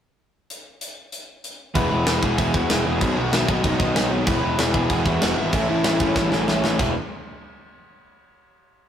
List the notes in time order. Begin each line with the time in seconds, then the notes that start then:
0.50 closed hi-hat
0.81 closed hi-hat
1.12 closed hi-hat
1.44 closed hi-hat
1.74 E1 E2 B2 E3 G#3 B3 E4 B4 B5, kick, crash
1.91 E1 E3 G#3 B3 E4
2.06 E1 E3 G#3 B3 E4, snare, crash
2.22 E1 E2 B2 E3 G#3 B3 E4 G#4 G#5, kick
2.38 E1 E3 G#3 B3 E4 G#4 G#5, kick, crash
2.54 E2 E3 G#3 B3 E4 F#4 F#5, kick
2.69 E1 E3 G#3 B3 E4 E5, snare, crash
2.85 E1 E3 G#3 B3 E4 G#4 G#5
3.01 B1 B2 D#3 F#3 B3 D#4, kick, crash
3.16 B1 B2 D#3 F#3 B3 D#4 F#4 F#5
3.32 B1 B2 D#3 F#3 B3 D#4 E4 E5, snare, crash
3.48 B1 B2 D#3 F#3 B3 D#4 D#5, kick
3.64 B1 B2 D#3 F#3 B3 D#4 D#5, kick, crash
3.79 B1 B2 D#3 F#3 B3 D#4, kick
3.95 B1 B2 D#3 F#3 B3 D#4, snare, crash
4.10 B1 B2 D#3 F#3 B3 D#4
4.25 E1 E2 B2 E3 G#3 B3 E4 B4 B5, kick, crash
4.42 E1 E3 G#3 B3 E4
4.58 E1 E3 G#3 B3 E4, snare, crash
4.73 E1 E2 B2 E3 G#3 B3 E4 G#4 G#5, kick
4.90 E1 E3 G#3 B3 E4 G#4 G#5, kick, crash
5.05 E2 E3 G#3 B3 E4 F#4 F#5, kick
5.22 E1 E3 G#3 B3 E4, snare, crash
5.37 G#1 E3 G#3 B3 E4 E5
5.52 A1 A2 E3 A3 C#4 E4 E5, kick, crash
5.68 A1 A2 E3 A3 C#4 E4
5.84 A1 A2 E3 A3 C#4 E4, snare, crash
6.00 A1 A2 E3 A3 C#4 E4, kick
6.15 A1 A2 E3 A3 C#4 E4, kick, snare
6.31 A1 A2 E3 A3 C#4 E4, snare
6.47 A1 A2 E3 A3 C#4 E4, snare
6.64 A1 A2 E3 A3 C#4 E4, snare
6.78 E1 E2 B2 E3 G#3 B3 E4, kick, crash